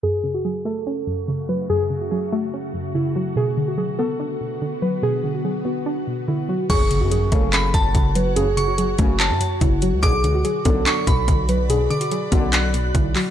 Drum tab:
CC |----------------|----------------|----------------|----------------|
HH |----------------|----------------|----------------|----------------|
CP |----------------|----------------|----------------|----------------|
BD |----------------|----------------|----------------|----------------|

CC |x---------------|----------------|----------------|----------------|
HH |x-x-x-x-x-x-x-x-|x-x-x-x-x-x-x-x-|x-x-x-x-x-x-x-x-|x-xxx-x-x-x-x-o-|
CP |--------x-------|--------x-------|--------x-------|--------x-----x-|
BD |o-----o---o-o---|------o-----o---|o-----o---o-o---|------o-----o---|